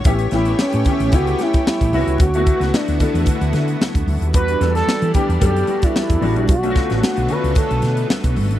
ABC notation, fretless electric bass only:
X:1
M:4/4
L:1/16
Q:"Swing 16ths" 1/4=112
K:D
V:1 name="Fretless electric bass" clef=bass
A,,,2 A,,,2 z A,, z A,,, C,,2 z3 A,,, =C,, ^C,, | D,,3 C,, z D,, z E,, z D,, D,2 z D,, D,, _E,, | E,,2 E,,2 z E, z E,, F,,2 z3 E,, A,,, _B,,, | B,,,3 A,,, z B,,, z C,, z B,,, B,,2 z B,,, G,,, ^G,,, |]